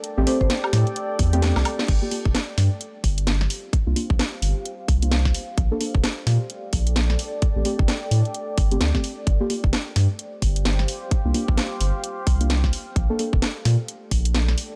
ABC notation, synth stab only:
X:1
M:4/4
L:1/16
Q:"Swing 16ths" 1/4=130
K:Gm
V:1 name="Synth stab"
z [A,CG] [A,CG] z8 [A,CG]4- [A,CG] | z [B,FG] [B,FG] z12 z | z [B,DF] [B,DF] z8 [B,DF]3 z2 | z [B,DA] [B,DA] z12 z |
z [A,CG] [A,CG] z8 [A,CG] z [A,CG] z2 | z [B,FG] [B,FG] z12 z | z [B,DF] [B,DF] z8 [B,DF]3 z2 | z [B,DA] [B,DA] z12 z |]